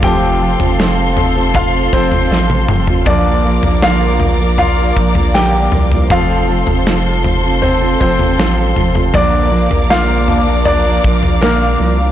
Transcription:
<<
  \new Staff \with { instrumentName = "String section" } { \time 4/4 \key bes \major \tempo 4 = 79 << { <a' c'' c'''>1 | <bes' d'' d'''>1 | <a' c'' c'''>1 | <bes' d'' d'''>1 | } \\ { f''1~ | f''1~ | f''1 | f''1 | } >> }
  \new Staff \with { instrumentName = "Grand piano" } { \time 4/4 \key bes \major <g' g''>2 <f' f''>8 <c' c''>4. | d''4 <f' f''>4 <f' f''>4 <g' g''>4 | <f' f''>2 <c' c''>8 <c' c''>4 r8 | <d' d''>4 <f' f''>4 <d' d''>4 <bes bes'>4 | }
  \new Staff \with { instrumentName = "Grand piano" } { \time 4/4 \key bes \major <f a c'>8 r4 <f a c'>8 r2 | <f bes d'>1 | <f a c'>1 | r4. <f bes d'>8 r2 | }
  \new Staff \with { instrumentName = "Steel-string acoustic guitar" } { \time 4/4 \key bes \major <f c' f' a'>8 <f c' f' a'>16 <c' f' a'>16 <f c' f' a'>8. <c' f' a'>8 <c' f' a'>16 <f c' f' a'>16 <c' f' a'>16 <f c' f' a'>8 <f c' f' a'>16 <c' f' a'>16 | <bes, d f bes d' bes'>8 <f bes d' bes'>16 <f bes d' bes'>16 <bes, d f bes d' bes'>8. <f bes d' bes'>8 <f bes d' bes'>16 <f bes d' bes'>16 <f bes d' bes'>16 <bes, d f bes d' bes'>8 <f bes d' bes'>16 <f bes d' bes'>16 | <f c' f' a'>8 <f c' f' a'>16 <c' f' a'>16 <f c' f' a'>8. <c' f' a'>8 <c' f' a'>16 <f c' f' a'>16 <c' f' a'>16 <f c' f' a'>8 <f c' f' a'>16 <c' f' a'>16 | <bes, d f bes d' bes'>8 <f bes d' bes'>16 <f bes d' bes'>16 <bes, d f bes d' bes'>8. <f bes d' bes'>8 <f bes d' bes'>16 <f bes d' bes'>16 <f bes d' bes'>16 <bes, d f bes d' bes'>8 <f bes d' bes'>16 <f bes d' bes'>16 | }
  \new Staff \with { instrumentName = "Sub bass" } { \clef bass \time 4/4 \key bes \major f,,8. f,,4.~ f,,16 f,,8 a,,8 f,,8 | bes,,8. bes,,4.~ bes,,16 bes,,4 c,8 | f,,8. f,,4.~ f,,16 f,,8 a,,8 f,,8 | bes,,8. bes,,4.~ bes,,16 bes,,4 c,8 | }
  \new DrumStaff \with { instrumentName = "Drums" } \drummode { \time 4/4 <bd tomfh>8. tomfh16 sn8 tomfh8 <bd tomfh>8 bd16 tomfh16 sn16 tommh16 toml16 tomfh16 | <bd tomfh>8. tomfh16 sn8 tomfh8 tomfh8 bd16 tomfh16 sn8 tomfh16 tomfh16 | <bd tomfh>8. tomfh16 sn8 tomfh8 tomfh8 bd16 tomfh16 sn8 tomfh16 tomfh16 | <bd tomfh>8. tomfh16 sn8 tomfh8 tomfh8 bd16 tomfh16 sn4 | }
>>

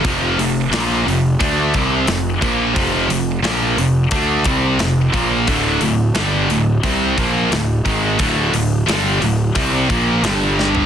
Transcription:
<<
  \new Staff \with { instrumentName = "Distorted electric guitar" } { \clef bass \time 4/4 \key d \minor \tempo 4 = 88 <f, c f>8 <f, c>8 <bes, f bes>8 <f, c>8 <d a d'>8 <c g c'>8 <f, c>8 <bes, f bes>8 | <f, c f>8 <f, c>8 <bes, f bes>8 <f, c>8 <d a d'>8 <c g c'>8 <f, c>8 <bes, f bes>8 | <d, a, d>8 <d, a,>8 <g, d g>8 <d, a,>8 <c g c'>8 <bes, f bes>8 <d, a,>8 <gis, ees gis>8 | <d, a, d>8 <d, a,>8 <g, d g>8 <d, a,>8 <c g c'>8 <bes, f bes>8 <g, d g>4 | }
  \new Staff \with { instrumentName = "Picked electric bass" } { \clef bass \time 4/4 \key d \minor f,,8 f,,8 bes,,8 f,,8 d,8 c,8 f,,8 bes,,8 | f,,8 f,,8 bes,,8 f,,8 d,8 c,8 f,,8 bes,,8 | d,,8 d,,8 g,,8 d,,8 c,8 bes,,8 d,,8 gis,,8 | d,,8 d,,8 g,,8 d,,8 c,8 bes,,8 g,,4 | }
  \new DrumStaff \with { instrumentName = "Drums" } \drummode { \time 4/4 <hho bd>8 hho8 <hho sn>8 hho8 <hho bd>8 <hho bd>8 <hho sn>8 <hho bd>8 | <hho bd>8 hho8 <hho sn>8 hho8 <hho bd>8 <hho bd>8 <hho sn>8 <hho bd>8 | <hho bd>8 hho8 <hho sn>8 hho8 <hho bd>8 <hho bd>8 <hho sn>8 <hho bd>8 | <hho bd>8 hho8 <hho sn>8 hho8 <hho bd>8 <hho bd>8 <hho sn>8 sn16 tomfh16 | }
>>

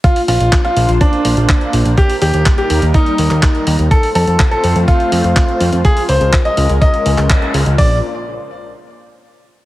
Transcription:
<<
  \new Staff \with { instrumentName = "Grand piano" } { \time 4/4 \key bes \major \tempo 4 = 124 f'16 r16 f'8 r16 f'8 r16 d'4.~ d'16 r16 | g'16 r16 g'8 r16 g'8 r16 ees'4.~ ees'16 r16 | a'16 r16 a'8 r16 a'8 r16 f'4.~ f'16 r16 | aes'16 r16 c''8 r16 ees''8 r16 ees''4.~ ees''16 r16 |
d''8 r2. r8 | }
  \new Staff \with { instrumentName = "Analog synth pad" } { \time 4/4 \key bes \major << { <bes d' c''>1 | <g bes'>1 | <a c' c''>1 | <aes des' bes'>1 |
<bes d' f' c''>8 r2. r8 | } \\ { f'1 | ees'1 | f'1~ | f'1 |
r1 | } >> }
  \new Staff \with { instrumentName = "Analog synth bass" } { \clef bass \time 4/4 \key bes \major r8 bes,,16 bes,,16 r8 bes,,16 bes,,16 r8 bes,,16 bes,,16 r8 bes,,16 bes,,16 | r8 ees,16 ees,16 r8 ees,16 ees,16 r8 ees,16 ees,16 r8 ees,16 ees,16 | r8 f,16 f,16 r8 f,16 f,16 r8 f,16 f,16 r8 f,16 f,16 | r8 des,16 des,16 r8 des,16 des,16 r8 des,16 des,16 r8 des,16 des,16 |
bes,,8 r2. r8 | }
  \new DrumStaff \with { instrumentName = "Drums" } \drummode { \time 4/4 <hh bd>16 hho16 hho16 hh16 <hc hh bd>16 hh16 hho16 hh16 <hh bd>16 hh16 hho16 hh16 <hc hh bd>16 hh16 hho16 hh16 | <hh bd>16 hho16 hho16 hh16 <hc hh bd>16 hh16 hho16 hh16 <hh bd>16 hh16 hho16 <hc hh>16 <hc hh bd>16 hh16 hho16 hh16 | <hh bd>16 hho16 hho16 hh16 <hc hh bd>16 hh16 hho16 hh16 <hh bd>16 hh16 hho16 hh16 <hc hh bd>16 hh16 hho16 hh16 | <hh bd>16 hho16 hho16 hh16 <hc hh bd>16 hh16 hho16 hh16 <hh bd>16 hh16 hho16 <hc hh>16 <hc hh bd>16 hh16 hho16 hh16 |
<hho bd>4 r4 r4 r4 | }
>>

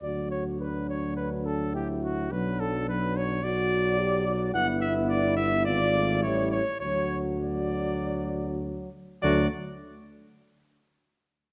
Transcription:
<<
  \new Staff \with { instrumentName = "Cornet" } { \time 4/4 \key d \major \tempo 4 = 104 d''8 cis''8 b'8 cis''8 b'8 a'8 g'8 fis'8 | b'8 a'8 b'8 cis''8 d''2 | fis''8 e''8 d''8 e''8 d''4 cis''8 cis''8 | cis''8 r8 d''2 r4 |
d''8 r2. r8 | }
  \new Staff \with { instrumentName = "Flugelhorn" } { \time 4/4 \key d \major d''8 cis''8 b'8 cis''8 b'8 a'8 g'8 fis'8 | b'8 a'8 b'8 cis''8 d''2 | fis''8 e''8 d''8 e''8 d''4 cis''8 cis''8 | cis''8 r8 d''2 r4 |
fis'8 r2. r8 | }
  \new Staff \with { instrumentName = "French horn" } { \time 4/4 \key d \major fis'4 d'2 e'4 | d'2 fis'4 g'8 fis'8 | e'2 eis'4 e'8 r8 | fis'2.~ fis'8 r8 |
a8 r2. r8 | }
  \new Staff \with { instrumentName = "Trombone" } { \clef bass \time 4/4 \key d \major fis1 | fis4 fis4 fis2 | b2 b8 a8 g8 r8 | fis4 fis2~ fis8 r8 |
fis8 r2. r8 | }
  \new Staff \with { instrumentName = "Tuba" } { \clef bass \time 4/4 \key d \major d,1 | b,,1 | g,,2 gis,,4 a,,8 r8 | d,2.~ d,8 r8 |
d,8 r2. r8 | }
>>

